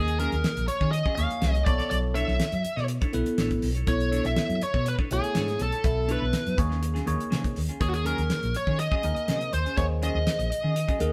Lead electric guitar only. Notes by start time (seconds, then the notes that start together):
Already playing: G#4
0.20 A#4
0.68 C#5
0.91 D#5
1.15 F5
1.65 D5
1.90 D5
2.15 E5
3.88 C#5
4.26 E5
4.63 C#5
4.88 B4
5.13 G#4
5.62 A4
6.12 B4
7.81 G#4
7.89 F#4
7.94 G#4
8.07 A#4
8.56 C#5
8.80 D#5
9.54 C5
9.77 C#5
10.03 D#5